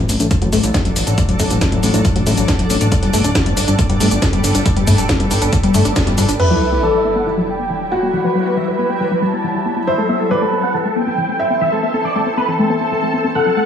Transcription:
Already playing: F#3 D4 A4 D5
0.09 A1 D4, open hi-hat, shaker
0.20 A1 D4, closed hi-hat, shaker
0.31 D3, kick, closed hi-hat, shaker
0.42 A1 F#3, closed hi-hat
0.53 A1 A3, open hi-hat, shaker
0.63 A1 D4, closed hi-hat, shaker
0.74 D3, kick, snare, closed hi-hat, shaker
0.85 A1 F#3, closed hi-hat
0.96 A1 D4, open hi-hat, shaker
1.07 A1 D4, closed hi-hat, shaker
1.18 D3, kick, closed hi-hat, shaker
1.29 A1 F#3, closed hi-hat
1.40 A1 A3, kick, open hi-hat, shaker
1.50 A1 D4, closed hi-hat, shaker
1.61 D3, kick, snare, closed hi-hat, shaker
1.72 A1 F#3, closed hi-hat
1.83 A1 D4, open hi-hat, shaker
1.94 A1 D4, closed hi-hat, shaker
2.05 D3, kick, closed hi-hat, shaker
2.16 A1 F#3, closed hi-hat
2.26 A1 A3, open hi-hat, shaker
2.37 A1 D4, closed hi-hat, shaker
2.48 D3, kick, snare, closed hi-hat, shaker
2.59 A1 F#3, closed hi-hat
2.70 A1 D4, open hi-hat, shaker
2.81 A1 D4, closed hi-hat, shaker
2.92 D3 G3 A4, kick, closed hi-hat, shaker
3.03 G1 G3, closed hi-hat
3.13 G1 A3, open hi-hat, shaker
3.24 D1 D4, closed hi-hat, shaker
3.35 D3, kick, snare, closed hi-hat, shaker
3.46 G1 G3, closed hi-hat
3.57 G1 D4, open hi-hat, shaker
3.68 G1 D4, closed hi-hat, shaker
3.79 D3, kick, closed hi-hat, shaker
3.90 G1 G3, closed hi-hat
4.00 G1 A3, open hi-hat, shaker
4.11 G1 D4, closed hi-hat, shaker
4.22 D3, kick, snare, closed hi-hat, shaker
4.33 G1 G3, closed hi-hat
4.44 G1 D4, open hi-hat, shaker
4.55 G1 D4, closed hi-hat, shaker
4.66 D3, kick, closed hi-hat, shaker
4.76 G1 G3, closed hi-hat
4.87 G1 A3, kick, open hi-hat, shaker
4.98 D1 D4, closed hi-hat, shaker
5.09 D3, kick, snare, closed hi-hat, shaker
5.20 G1 G3, closed hi-hat
5.31 G1 D4, open hi-hat, shaker
5.42 G1 D4, closed hi-hat, shaker
5.53 D3, kick, closed hi-hat, shaker
5.63 G1 G3, closed hi-hat
5.74 G1 A3, open hi-hat, shaker
5.85 G1 D4, closed hi-hat, shaker
5.96 D3, kick, snare, closed hi-hat, shaker
6.07 G1 G3, closed hi-hat
6.18 G1 D4, open hi-hat, shaker
6.29 G1 D4, closed hi-hat, shaker
6.39 E3 F#3 G3 E4 B4 E5, crash, sub drop
6.50 F#3 E4
6.61 G3 E5
6.72 B3 E4
6.83 E3 A4 D5
6.94 F#3 E4
7.05 B3 E4
7.16 B3 F#5
7.26 E3 E4
7.37 F#3 E4
7.48 G3 G5
7.59 B3
7.70 E3
7.81 F#3
7.92 B3 F#4
8.03 B3
8.13 E3 F#5
8.24 F#3 B4
8.35 G3 F#5
8.46 B3 B4
8.57 E3 E5
8.68 F#3 B4
8.79 B3 B4
8.90 B3 G5
9.00 E3 B4
9.11 F#3 B4
9.22 G3 A5
9.33 B3
9.44 E3
9.55 F#3
9.66 B3
9.76 B3
9.87 E3 C4 A4 C5 E5
9.98 A3 A4
10.09 B3 E5
10.20 C4 A4
10.31 E3 B4 D5
10.42 A3 A4
10.53 C4 A4
10.63 C4 F#5
10.74 E3 A4
10.85 A3 A4
10.96 B3 G5
11.07 C4
11.18 E3
11.29 A3
11.39 C4 E5
11.50 C4
11.61 E3 E5
11.72 A3 A4
11.83 B3 E5
11.94 C4 A4
12.05 E3 D5
12.16 A3 A4
12.26 C4 A4
12.37 C4 B4
12.48 E3 A4
12.59 A3 A4
12.70 B3 A4
12.81 C4
12.92 E3
13.02 A3
13.13 C4
13.24 C4
13.35 A2 D3 A3 F#4 A4 F#5
13.46 F#3 A4
13.57 A3 F#5

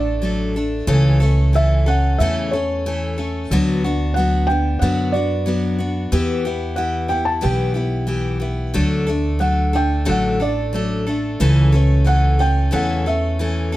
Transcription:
Already playing: A1 A3 D4 A4 D5
0.22 F#3 A3 D4 A4
0.56 A3 D4 A4
0.87 C#2 C#3 E3 A3 C#4 A4
1.20 A3 C#4 A4
1.53 E3 A3 C#4 A4 E5
1.86 A3 C#4 A4 F#5
2.18 E2 C#3 E3 A3 C#4 A4 E5
2.51 C#4 A4 C#5
2.55 A3
2.86 E3 A3 C#4 A4
3.18 A3 C#4 A4
3.51 D2 D3 F#3 B3 D4 F#4
3.84 B3 D4 F#4
4.14 F#3 B3 F#5
4.18 D4 F#4
4.47 D4 G5
4.51 B3
4.79 F#2 D3 F#3 B3 D4 F#5
4.84 F#4
5.12 D4 F#4 D5
5.16 B3
5.46 F#3 B3 D4 F#4
5.79 B3 D4 F#4
6.12 E2 E3 B3 E4 G4
6.45 B3 E4 G4
6.76 E3 B3 E4 G4 F#5
7.08 B3 E4 G4 G5
7.25 A5
7.41 B1 E3 B3 E4 G4 G5
7.74 B3 E4 G4
8.07 E3 B3 E4 G4
8.40 B3 E4 G4
8.74 D2 D3 F#3 A3 D4 A4
9.07 A3 D4 A4
9.39 F#3 A3 D4 A4 F#5
9.73 A3 D4 A4 G5
10.05 A1 D3 F#3 A3 D4 A4
10.09 F#5
10.40 A3 D4 A4 D5
10.73 F#3 A3 D4 A4
11.07 A3 D4 A4
11.40 C#2 C#3 E3 A3 C#4 A4
11.72 A3 C#4 A4
12.05 E3 A3 C#4 A4 F#5
12.39 A3 C#4 A4 G5
12.71 E2 C#3 E3 A3 C#4 A4 F#5
13.06 A3 C#4 A4 E5
13.39 E3 A3 C#4 A4
13.72 C#4 A4

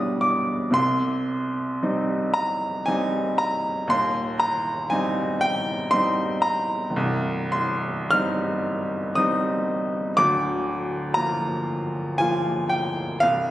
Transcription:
Already playing: B1 B2 G3 D4 G4 D5 D#5 F5 D#6
0.21 D6
0.71 C2 C3 C6
1.83 G3 C4 D#4
2.34 A#5
2.86 G3 C4 D#4 G#5
3.38 A#5
3.87 D#2 C6
3.92 D#1
4.40 A#5
4.90 G3 C4 D#4 G#5
5.41 G5
5.91 G3 C4 D#4 C6
6.42 A#5
6.90 C1
6.96 C2
7.52 C6
8.11 G3 C4 D#4 F6
9.15 G3 C4 D#4 D#6
10.17 D1 D2 D6
11.14 F3 A#3 F4 A#5
12.18 F3 A#3 F4 G#5
12.69 G5
13.20 C1 C2 F5

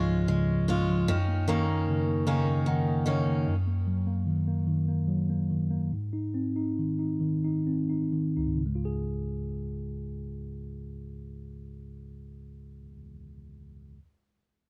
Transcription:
Already playing: C#2 G#2 C#3 F3 G#3 C#4 F4
0.08 F3
0.28 C#3 G#3
0.50 F3
0.68 G#2 G#3 C#4 F4
0.89 F3
1.08 F#2 D#3 C#4
1.28 A#3
1.48 D#3 A#3 C#4
1.69 A#3
1.88 C#3
2.08 A#3
2.27 C#3 D#3 A#3 C#4 G#5
2.48 A#3
2.66 D#3 F#5
2.88 A#3 D#5
3.06 C#3 D#3 A#3 C#4 C#5
3.28 A#3
3.48 F#2
3.67 A#3
3.87 F#3
4.07 A#3
4.27 D#3
4.48 A#3
4.67 D#3
4.88 A#3
5.08 F#3
5.30 A#3
5.50 D#3
5.71 A#3
5.93 G#2
6.13 D#4
6.34 C4
6.56 D#4
6.79 D#3
6.99 D#4
7.21 D#3
7.44 D#4
7.67 C4
7.89 D#4
8.13 D#3
8.37 C#2 D#4
8.47 G#2
8.56 C#3
8.66 G#3
8.75 F4
8.85 G#4

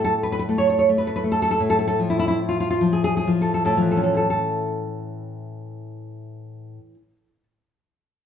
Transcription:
Already playing: A2 A3
0.04 A4
0.23 B4
0.32 B4
0.39 B4
0.49 A3
0.58 C#5
0.70 C#5
0.79 C#5
0.89 A3
0.98 B4
1.07 B4
1.16 B4
1.24 A3
1.32 A4
1.42 A4
1.51 A4
1.60 A2
1.70 A4
1.87 A4
1.99 F3
2.10 E4
2.19 E4
2.28 E4
2.49 F4
2.60 F4
2.70 F4
2.81 F3
2.93 G#4
3.04 G#4
3.17 G#4
3.27 F3
3.42 A4
3.54 A4
3.65 A2 A4
3.77 F3
3.81 E3
3.91 A4
3.97 C#4
4.03 A4
4.14 E4 A4
4.30 A4

